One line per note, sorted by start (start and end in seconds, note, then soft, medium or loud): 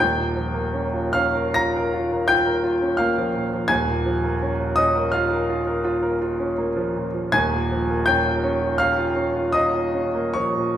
0.00 3.64 D#1 medium
0.00 3.65 D#2 medium
0.00 1.10 G5 medium
0.00 1.14 G6 loud
0.18 0.48 A#2 soft
0.36 0.66 F3 soft
0.54 0.85 A#3 medium
0.74 1.06 C#4 soft
0.93 1.27 F4 soft
1.13 1.48 C#4 medium
1.13 1.53 F5 medium
1.13 1.55 F6 loud
1.35 1.67 A#4 medium
1.54 1.87 F4 medium
1.54 2.25 A#5 medium
1.54 2.29 A#6 loud
1.76 2.05 A#4 medium
1.94 2.22 F4 medium
2.12 2.40 A#4 medium
2.28 2.57 F4 medium
2.28 2.95 G5 medium
2.28 2.99 G6 loud
2.46 2.75 A#4 soft
2.64 2.92 F4 medium
2.82 3.10 C#4 medium
2.97 3.27 A#3 medium
2.97 3.65 F5 medium
2.97 3.68 F6 medium
3.18 3.45 F3 medium
3.36 3.63 A#2 soft
3.53 3.70 F3 soft
3.68 7.30 D#1 medium
3.68 7.30 D#2 medium
3.68 4.72 G#5 medium
3.68 4.75 G#6 loud
3.88 4.16 A#2 medium
4.06 4.33 F3 soft
4.24 4.52 A#3 soft
4.42 4.70 C#4 medium
4.60 4.88 F4 soft
4.76 5.06 C#4 medium
4.76 5.10 D#5 medium
4.76 5.12 D#6 loud
4.96 5.24 A#4 medium
5.12 5.42 F4 medium
5.12 6.17 F5 medium
5.12 6.21 F6 medium
5.31 5.59 A#4 medium
5.49 5.78 F4 medium
5.67 5.96 A#4 medium
5.85 6.14 F4 medium
6.03 6.32 A#4 medium
6.21 6.51 F4 soft
6.40 6.69 C#4 medium
6.58 6.88 A#3 soft
6.77 7.07 F3 medium
6.96 7.27 A#2 soft
7.14 7.34 F3 soft
7.32 10.77 D#1 medium
7.32 10.77 D#2 medium
7.32 8.04 G#5 medium
7.32 8.08 G#6 loud
7.54 7.83 A#2 soft
7.72 8.01 F3 soft
7.90 8.19 A#3 soft
8.06 8.37 C#4 soft
8.06 8.76 G5 medium
8.06 8.80 G6 loud
8.26 8.55 F4 soft
8.44 8.73 C#4 medium
8.62 8.91 F4 soft
8.78 9.10 C#4 medium
8.78 9.51 F5 medium
8.78 9.54 F6 loud
8.98 9.29 F4 medium
9.16 9.47 C#4 soft
9.35 9.66 F4 medium
9.53 9.86 C#4 medium
9.53 10.31 D#5 medium
9.53 10.35 D#6 loud
9.74 10.07 F4 soft
9.94 10.28 C#4 soft
10.15 10.49 A#3 soft
10.34 10.70 F3 soft
10.34 10.77 C#5 medium
10.34 10.77 C#6 medium
10.57 10.77 A#2 soft